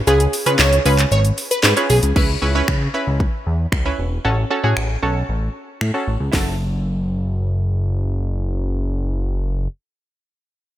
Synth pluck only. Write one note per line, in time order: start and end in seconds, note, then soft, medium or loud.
0.07 0.28 C#4 medium
0.07 0.28 F4 medium
0.07 0.28 G#4 medium
0.07 0.28 B4 medium
0.46 0.67 C#4 medium
0.46 0.67 F4 medium
0.46 0.67 G#4 medium
0.46 0.67 B4 medium
0.86 1.34 C#4 medium
0.86 1.34 F4 medium
0.86 1.34 G#4 medium
0.86 1.34 B4 medium
1.77 1.98 C#4 medium
1.77 1.98 F4 medium
1.77 1.98 G#4 medium
1.77 1.98 B4 medium
2.16 2.30 C#4 medium
2.16 2.30 E4 medium
2.16 2.30 B4 loud
2.42 2.49 C#4 medium
2.42 2.49 E4 medium
2.42 2.49 B4 loud
2.55 2.76 C#4 medium
2.55 2.76 E4 medium
2.55 2.76 B4 loud
2.94 3.43 C#4 medium
2.94 3.43 E4 medium
2.94 3.43 B4 loud
3.85 4.06 C#4 medium
3.85 4.06 E4 medium
3.85 4.06 B4 loud
4.25 4.38 C#4 medium
4.25 4.39 F#4 medium
4.25 4.39 A4 medium
4.50 4.57 C#4 medium
4.50 4.58 F#4 medium
4.50 4.58 A4 loud
4.63 4.84 C#4 medium
4.63 4.85 F#4 medium
4.63 4.85 G#4 loud
5.03 5.51 C#4 medium
5.03 5.51 F#4 medium
5.03 5.51 A4 medium
5.94 6.15 C#4 medium
5.94 6.15 F#4 medium
5.94 6.15 A4 loud
6.32 9.66 E4 medium
6.32 9.68 F#4 medium
6.36 9.70 A4 medium